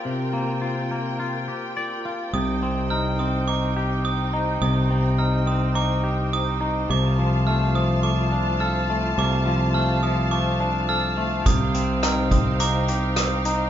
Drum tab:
HH |--------|--------|--------|--------|
SD |--------|--------|--------|--------|
BD |--------|--------|--------|--------|

HH |--------|xxxxxxxx|
SD |--------|--r---r-|
BD |--------|o--o----|